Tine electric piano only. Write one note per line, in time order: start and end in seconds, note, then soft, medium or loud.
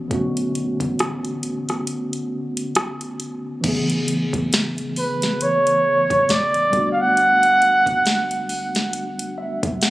0.00 0.10 E3 medium
0.00 0.10 A3 medium
0.00 0.10 B3 medium
0.00 0.12 C#4 medium
0.00 0.12 F#4 medium
0.08 3.58 D3 medium
0.08 3.59 A3 medium
0.08 3.60 B3 medium
0.13 3.61 C#4 medium
0.13 3.62 F#4 medium
3.61 6.67 E3 medium
3.61 6.68 A3 medium
3.61 6.69 B3 medium
3.66 6.70 C#3 medium
3.66 6.71 G#4 medium
6.70 9.90 G3 medium
6.70 9.90 A3 medium
6.70 9.90 B3 medium
6.75 9.90 D4 medium
6.75 9.90 F#4 medium
9.38 9.79 E5 medium
9.82 9.90 F#5 medium